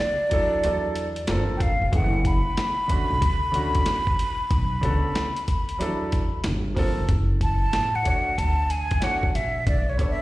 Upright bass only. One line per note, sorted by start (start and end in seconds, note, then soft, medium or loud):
0.64 1.30 E2 loud
1.29 1.74 G1 medium
1.81 1.91 F1 medium
1.93 2.39 F#1 loud
3.10 3.22 B1 medium
3.22 3.78 D2 loud
4.51 4.79 B1 loud
4.83 5.01 C#2 medium
5.80 6.46 E2 medium
6.44 6.90 G1 medium
6.97 7.07 F1 medium
7.09 7.65 F#1 loud
7.73 8.01 A1 medium
8.38 8.94 D2 medium
9.35 9.63 A#1 medium
9.67 9.95 B1 loud